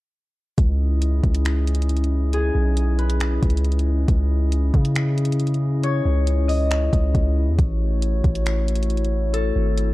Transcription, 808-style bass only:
0.58 C#2
1.23 C#2
2.55 B1
3.42 C#2
4.08 C#2
4.74 C#3
6.05 C#2
6.93 C#2
7.15 C#2
7.48 E2
7.59 A1
8.24 A1
9.56 G#1

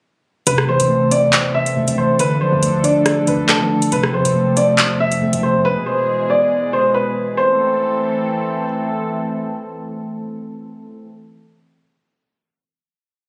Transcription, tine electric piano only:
0.47 C3
0.69 E3
0.89 A3
1.12 C4
1.33 C5
1.54 C4
1.76 A3
1.98 E3
2.19 D3
2.41 F3
2.63 A3
2.84 D4
3.06 D5
3.27 D4
3.48 A3
3.71 F3
3.92 C3
4.14 F3
4.35 A3
4.57 C4
4.79 C5
5.00 C4
5.22 A3
5.43 F3

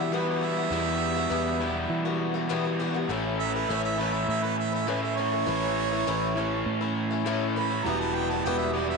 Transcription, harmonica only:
0.00 E5
0.14 B4
0.28 D5
0.43 E5
3.39 E5
3.54 B4
3.70 E5
3.84 E5
4.00 B4
4.14 E5
4.29 E5
4.43 B4
4.59 E5
4.75 E5
4.88 B4
5.03 E5
5.17 C#5
7.56 B5
7.84 A#5
8.00 A5
8.15 G5
8.30 A5
8.44 G5
8.58 E5
8.73 D5
8.89 E5

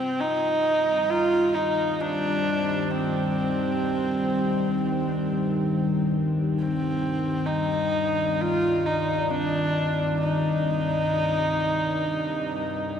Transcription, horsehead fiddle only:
Already playing: C4
0.20 D#4
1.10 F4
1.55 D#4
2.01 D4
2.91 C4
6.59 C4
7.46 D#4
8.41 F4
8.86 D#4
9.30 D4
10.20 D#4

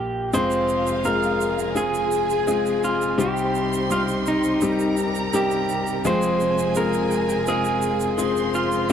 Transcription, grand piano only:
Already playing: A#1 A#2 A#3 D4 F4 A#4
0.33 F1 F2 G#3 C4 F4 G#4
1.05 G#3 C4 F4 G#4
1.75 G#3 C4 F4 G#4
2.47 G#3 C4 F4 G#4
3.18 C2 C3 G3 C4 D#4 G4
3.90 G3 C4 D#4 G4
4.62 G3 C4 D#4 G4
5.33 G3 C4 D#4 G4
6.05 F1 F2 G#3 C4 F4 G#4
6.76 G#3 C4 F4 G#4
7.48 G#3 C4 F4 A#4
8.18 G#3 C4 F4 G#4
8.89 C4

